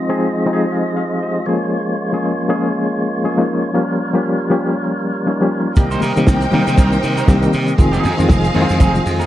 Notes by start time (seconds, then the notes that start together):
Already playing: F3 G#3 C4 D#4 F4 G#4 D#5
0.09 F3 G#3 C4 D#4 G#4
0.46 F3 G#3 C4 D#4 G4 G#5
0.53 G#4
0.72 D#5 F5 G#5
0.96 C5 D#5 F5
1.23 G4 C5 D#5
1.46 F3 G#3 A#3 C#4 G#4 C#5
2.12 F3 G#3 A#3 C#4 G#4
2.48 F3 G#3 A#3 C#4 G#4
3.24 F3 G#3 A#3 C#4 G#4
3.37 F3 G#3 A#3 C#4 D#4
3.74 F3 G3 A#3 C#4 F4 G4 A#4
4.13 F3 G3 A#3 C#4 G4
4.50 F3 G3 A#3 C#4 G4
5.26 F3 G3 A#3 C#4 D#4
5.41 F3 G3 A#3 C#4 G4
5.76 C2 D#3 G3 A#3 C4 D#4 G4 C5 D#5 G5, muted clean electric guitar stroke, kick, closed hi-hat, muted conga, shaker
5.91 G3 C4 D#4 C5, closed hi-hat, muted conga, shaker
6.00 C3 G3 C4 D#4 A#4, open hi-hat, high conga, shaker
6.16 C3 D#3 G3 A#3 C4 D#4, muted clean electric guitar stroke, closed hi-hat, shaker
6.27 C2, kick, snare, muted conga, high conga, shaker
6.41 muted clean electric guitar stroke, closed hi-hat, shaker
6.52 C3 D#3 G3 A#3 C4 D#4 A#4, open hi-hat, high conga, low conga
6.67 C3, muted clean electric guitar stroke, snare, closed hi-hat, shaker
6.77 C2 G3 C4 D#4 A#4, kick, closed hi-hat, muted conga, low conga, shaker
6.92 muted clean electric guitar stroke, closed hi-hat, muted conga, shaker
7.03 C3, muted clean electric guitar stroke, open hi-hat, shaker
7.17 G3 C4 D#4 A#4, closed hi-hat, high conga, shaker
7.28 C2 D#3 G3 A#3 C4 G4, kick, snare, muted conga, high conga, shaker
7.41 D#3 G3 A#3 C4 A#4, muted clean electric guitar stroke, closed hi-hat, high conga, shaker
7.53 C3, open hi-hat, shaker
7.66 muted clean electric guitar stroke, closed hi-hat, shaker
7.78 F1 D#3 F3 G#3 C4 F4 G#4 F5, muted clean electric guitar stroke, kick, closed hi-hat, shaker
7.92 F3 C4 D#4 G#4, closed hi-hat, muted conga, shaker
8.03 F2 F3 C4 D#4 G#4, open hi-hat, high conga, shaker
8.17 F2 D#3 F3 G#3 C4 F4, muted clean electric guitar stroke, closed hi-hat, shaker
8.29 F1, kick, snare, muted conga, high conga, shaker
8.43 muted clean electric guitar stroke, closed hi-hat, muted conga, shaker
8.54 F2 D#3 F3 G#3 C4 D#4 E4 G#4, open hi-hat, high conga, low conga
8.62 F4
8.68 F2, muted clean electric guitar stroke, snare, closed hi-hat, shaker
8.80 F1 F3 C4 D#4 G#4, kick, closed hi-hat, muted conga, low conga, shaker
8.95 muted clean electric guitar stroke, closed hi-hat, shaker
9.05 F2, muted clean electric guitar stroke, open hi-hat, shaker
9.19 F3 C4 D#4 A#4, closed hi-hat, high conga, shaker